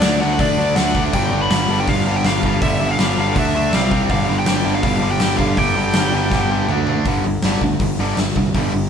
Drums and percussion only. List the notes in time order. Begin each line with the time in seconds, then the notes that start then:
0.02 snare, open hi-hat
0.39 kick, open hi-hat
0.76 snare, open hi-hat
0.95 kick
1.13 kick, crash
1.51 snare, open hi-hat
1.88 kick, open hi-hat
2.24 snare, open hi-hat
2.43 kick
2.62 kick, open hi-hat
2.99 snare, open hi-hat
3.36 kick, open hi-hat
3.73 snare, open hi-hat
3.91 kick
4.09 kick, open hi-hat
4.46 snare, open hi-hat
4.83 kick, open hi-hat
5.20 snare, open hi-hat
5.39 kick
5.57 kick, open hi-hat
5.94 snare, open hi-hat
6.31 kick, snare
6.69 mid tom
6.87 floor tom
7.05 kick, open hi-hat
7.43 snare, open hi-hat
7.61 kick
7.80 kick, open hi-hat
8.17 snare, open hi-hat
8.36 kick
8.54 kick, open hi-hat